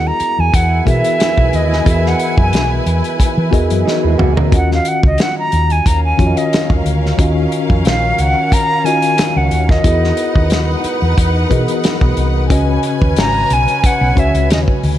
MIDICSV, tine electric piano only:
0, 0, Header, 1, 2, 480
1, 0, Start_track
1, 0, Tempo, 665188
1, 1347, Time_signature, 4, 2, 24, 8
1, 10812, End_track
2, 0, Start_track
2, 0, Title_t, "Tine electric piano"
2, 0, Program_c, 0, 4
2, 0, Control_c, 0, 64, 127
2, 0, Note_on_c, 0, 59, 67
2, 0, Note_on_c, 0, 64, 83
2, 0, Note_on_c, 0, 66, 73
2, 0, Note_on_c, 0, 68, 77
2, 0, Note_on_c, 0, 70, 71
2, 0, Note_on_c, 0, 75, 86
2, 87, Note_off_c, 0, 64, 0
2, 89, Note_off_c, 0, 59, 0
2, 91, Note_off_c, 0, 66, 0
2, 93, Note_off_c, 0, 68, 0
2, 95, Note_off_c, 0, 70, 0
2, 96, Note_off_c, 0, 75, 0
2, 615, Note_on_c, 0, 52, 70
2, 618, Note_on_c, 0, 59, 65
2, 621, Note_on_c, 0, 66, 68
2, 627, Note_on_c, 0, 68, 63
2, 630, Note_on_c, 0, 70, 69
2, 635, Note_on_c, 0, 76, 77
2, 1114, Note_off_c, 0, 52, 0
2, 1116, Note_off_c, 0, 59, 0
2, 1117, Note_off_c, 0, 66, 0
2, 1120, Note_off_c, 0, 68, 0
2, 1122, Note_off_c, 0, 70, 0
2, 1124, Note_off_c, 0, 76, 0
2, 1332, Note_on_c, 0, 52, 71
2, 1335, Note_on_c, 0, 59, 61
2, 1339, Note_on_c, 0, 66, 60
2, 1344, Note_on_c, 0, 68, 58
2, 1349, Note_on_c, 0, 70, 57
2, 1353, Note_on_c, 0, 75, 74
2, 2000, Note_off_c, 0, 52, 0
2, 2002, Note_off_c, 0, 59, 0
2, 2004, Note_off_c, 0, 66, 0
2, 2006, Note_off_c, 0, 68, 0
2, 2009, Note_off_c, 0, 70, 0
2, 2011, Note_off_c, 0, 75, 0
2, 2532, Note_on_c, 0, 52, 83
2, 2535, Note_on_c, 0, 59, 76
2, 2537, Note_on_c, 0, 66, 81
2, 2542, Note_on_c, 0, 68, 76
2, 2547, Note_on_c, 0, 70, 73
2, 2551, Note_on_c, 0, 75, 93
2, 3032, Note_off_c, 0, 52, 0
2, 3033, Note_off_c, 0, 59, 0
2, 3034, Note_off_c, 0, 66, 0
2, 3037, Note_off_c, 0, 68, 0
2, 3039, Note_off_c, 0, 70, 0
2, 3041, Note_off_c, 0, 75, 0
2, 3257, Note_on_c, 0, 51, 64
2, 3262, Note_on_c, 0, 61, 65
2, 3266, Note_on_c, 0, 65, 61
2, 3273, Note_on_c, 0, 66, 63
2, 3275, Control_c, 0, 64, 0
2, 3276, Note_on_c, 0, 75, 71
2, 3420, Control_c, 0, 64, 127
2, 3922, Note_off_c, 0, 51, 0
2, 3924, Note_off_c, 0, 61, 0
2, 3927, Note_off_c, 0, 65, 0
2, 3930, Note_off_c, 0, 66, 0
2, 3932, Note_off_c, 0, 75, 0
2, 4456, Note_on_c, 0, 51, 69
2, 4462, Note_on_c, 0, 61, 65
2, 4464, Note_on_c, 0, 65, 72
2, 4472, Note_on_c, 0, 66, 64
2, 4475, Note_on_c, 0, 73, 69
2, 4520, Note_off_c, 0, 73, 0
2, 4523, Note_on_c, 0, 75, 81
2, 4953, Note_off_c, 0, 51, 0
2, 4956, Note_off_c, 0, 61, 0
2, 4957, Note_off_c, 0, 65, 0
2, 4961, Note_off_c, 0, 66, 0
2, 4987, Note_off_c, 0, 75, 0
2, 5181, Note_on_c, 0, 51, 83
2, 5182, Note_on_c, 0, 61, 74
2, 5189, Note_on_c, 0, 65, 74
2, 5194, Note_on_c, 0, 66, 79
2, 5198, Note_on_c, 0, 75, 84
2, 5844, Note_off_c, 0, 51, 0
2, 5845, Note_off_c, 0, 61, 0
2, 5848, Note_off_c, 0, 65, 0
2, 5851, Note_off_c, 0, 66, 0
2, 5853, Note_off_c, 0, 75, 0
2, 6381, Note_on_c, 0, 51, 79
2, 6386, Note_on_c, 0, 61, 66
2, 6390, Note_on_c, 0, 65, 64
2, 6394, Note_on_c, 0, 66, 68
2, 6399, Note_on_c, 0, 75, 82
2, 6876, Note_off_c, 0, 51, 0
2, 6879, Note_off_c, 0, 61, 0
2, 6881, Note_off_c, 0, 65, 0
2, 6883, Note_off_c, 0, 66, 0
2, 6885, Note_off_c, 0, 75, 0
2, 7099, Note_on_c, 0, 64, 74
2, 7103, Note_on_c, 0, 59, 61
2, 7104, Note_on_c, 0, 66, 67
2, 7109, Note_on_c, 0, 68, 58
2, 7113, Note_on_c, 0, 70, 63
2, 7115, Control_c, 0, 64, 0
2, 7119, Note_on_c, 0, 75, 77
2, 7258, Control_c, 0, 64, 127
2, 7764, Note_off_c, 0, 64, 0
2, 7766, Note_off_c, 0, 59, 0
2, 7766, Note_off_c, 0, 66, 0
2, 7769, Note_off_c, 0, 68, 0
2, 7771, Note_off_c, 0, 70, 0
2, 7774, Note_off_c, 0, 75, 0
2, 8296, Note_on_c, 0, 52, 93
2, 8300, Note_on_c, 0, 59, 84
2, 8301, Note_on_c, 0, 66, 78
2, 8306, Note_on_c, 0, 68, 82
2, 8310, Note_on_c, 0, 70, 81
2, 8314, Note_on_c, 0, 75, 98
2, 8794, Note_off_c, 0, 52, 0
2, 8796, Note_off_c, 0, 59, 0
2, 8797, Note_off_c, 0, 66, 0
2, 8799, Note_off_c, 0, 68, 0
2, 8801, Note_off_c, 0, 70, 0
2, 8803, Note_off_c, 0, 75, 0
2, 9015, Note_on_c, 0, 49, 85
2, 9022, Note_on_c, 0, 61, 81
2, 9026, Note_on_c, 0, 66, 70
2, 9029, Note_on_c, 0, 71, 76
2, 9034, Control_c, 0, 64, 0
2, 9034, Note_on_c, 0, 75, 100
2, 9148, Control_c, 0, 64, 127
2, 9683, Note_off_c, 0, 49, 0
2, 9686, Note_off_c, 0, 61, 0
2, 9688, Note_off_c, 0, 66, 0
2, 9689, Note_off_c, 0, 71, 0
2, 9692, Note_off_c, 0, 75, 0
2, 10213, Note_on_c, 0, 49, 73
2, 10217, Note_on_c, 0, 61, 70
2, 10223, Note_on_c, 0, 66, 67
2, 10228, Note_on_c, 0, 71, 71
2, 10232, Note_on_c, 0, 73, 78
2, 10714, Note_off_c, 0, 49, 0
2, 10716, Note_off_c, 0, 61, 0
2, 10719, Note_off_c, 0, 66, 0
2, 10721, Note_off_c, 0, 71, 0
2, 10723, Note_off_c, 0, 73, 0
2, 10812, End_track
0, 0, End_of_file